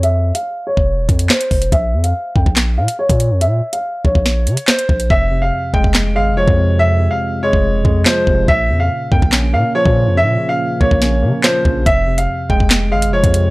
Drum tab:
HH |x--x------xx-xox|x--x----x--x-xx-|x--x------xx-x-x|----------------|
CP |------------x---|--------x-------|------------x---|--------x-------|
SD |------------o---|--------o-------|--------o---o---|--------o-------|
BD |-------o--o---o-|o-----oo-----o--|------oo------o-|o-----oo-----o--|

HH |----------------|----------------|----------------|x--x----x--x-xx-|
CP |------------x---|--------x-------|------------x---|--------x-------|
SD |------------o---|--------o-------|--------o---o---|--------o-------|
BD |-------o--o---o-|o-----oo-----o--|------oo------o-|o-----oo-----o--|